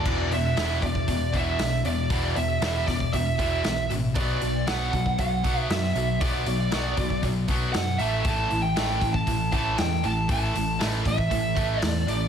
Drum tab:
CC |x---------------|----------------|----------------|----------------|
HH |--o-o-o-o-o-o-o-|o-o-o-o-o-o-o-o-|o-o-o-o-o-o-o-o-|o-o-o-o-o-o-o-o-|
SD |----o-------o---|----o-o-----o---|----o-------oo--|----o-------o---|
BD |o-----ooo-o-----|o-----ooo-o-----|o-----ooo-o-----|o-----ooo-o-----|

CC |----------------|----------------|
HH |o-o-o-o-o-o-o-o-|o-o-o-o-o-o-o-o-|
SD |----o-------o---|----o-------o---|
BD |o-----ooo-o-----|o-----ooo-o-----|